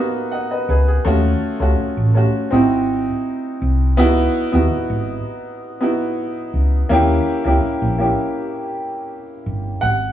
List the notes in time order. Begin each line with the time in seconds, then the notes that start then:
Already playing: A#3 B3 D#4 F#4
0.32 D#5 F#5
0.51 B4 D#5
0.69 C#2 G#4 B4
0.88 G#4
1.05 D#2 A3 C#4 F4 F#4
1.60 C#2 A3 C#4 F4 F#4
1.79 muted fingered electric bass stroke
1.97 A1
2.14 A3 C#4 F4 F#4
2.51 G#1 C4 D#4 E4 F#4
3.62 C2
3.97 C#2 B3 D#4 E4 F#4
4.52 D#2 B3 D#4 E4 F#4
4.72 muted fingered electric bass stroke
4.90 G#1
5.81 B3 D#4 E4 F#4
6.54 C#2
6.89 D#2 A#3 C#4 E4 G4
7.44 C#2 A#3 C#4 E4 G4
7.63 muted fingered electric bass stroke
7.82 A#1
7.98 A#3 C#4 E4 G4
9.46 G1
9.81 G#1 F#5